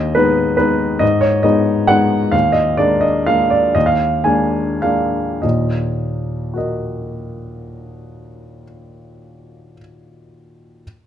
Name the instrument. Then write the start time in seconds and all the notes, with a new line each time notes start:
grand piano
Already playing: D#2 D#5
0.15 G#3 B3 D#4 B4
0.57 G#3 B3 D#4 B4
0.99 G#2 D#5
1.21 C#5
1.43 G#3 B3 D#4 D#5
1.87 G#3 B3 D#4 F#5
2.32 D#2 F5
2.52 D#5
2.77 G#3 A#3 D4 D5
3.01 D#5
3.26 G#3 A#3 D4 F5
3.50 D5
3.75 D#2 D#5
3.86 F5
4.24 G#3 A#3 D4 G#5
4.82 G#3 A#3 D4 F5
5.42 D#2 A#2 D#5
6.54 F#4 A#4 D#5